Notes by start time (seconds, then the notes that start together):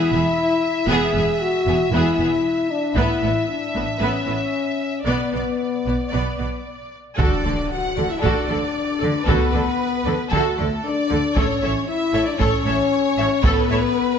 Already playing: E4 E5
0.11 E1 E2 B3 G#4
0.88 E1 E2 B3 G#4
1.13 E1 E2 B3 G#4
1.39 F#4
1.66 E1 E2 B3 G#4
1.91 E1 E2 B3 E4 G#4
2.18 E1 E2 B3 G#4
2.70 D4
2.95 A1 A2 B3 E4 B4 E5, taiko
3.23 A1 A2 B3 B4
3.48 D4
3.75 A1 A2 B3 B4
3.99 A1 A2 B3 C#4 B4
4.25 A1 A2 B3 B4
5.05 B1 B2 B3 D5
5.32 B1 B2 B3 D5
5.85 B1 B2 B3 D5
6.11 B1 B2 B3 D5
6.37 B1 B2 B3 D5
7.18 D2 D3 D4 F#4 A4 D5, taiko, impact
7.44 D2 D3 A4 D5
7.71 F#4 F#5
7.96 D2 D3 A4 D5
8.10 E4 E5
8.20 D2 D4 F#4 A4 D5, taiko
8.25 D3
8.49 D2 D3 A4 D5
9.00 D2 D3 A4 D5
9.24 D2 B3 F#4 A4 B4
9.28 D3, taiko
9.52 D2 D3 A4 D5
10.05 D2 D3 A4 D5
10.31 D2 D3 A3 F#4 A4, taiko
10.58 D2 D3 A4 D5
10.84 D4 D5
11.08 D2 D3 D5
11.12 A4
11.35 A1 A2 C#4 A4 C#5, taiko
11.62 A1 A2 A4 C#5 E5
11.87 E4 E5
12.13 A1 A2 A4 C#5 E5
12.26 D4 D5
12.38 A1 A2 C#4 A4 C#5, taiko
12.65 A1 A2 A4 C#5 E5
13.17 A1 A2 A4 C#5 E5
13.43 A1 A2 B3 A4 B4 C#5, taiko
13.69 A1 A2 A4 C#5 E5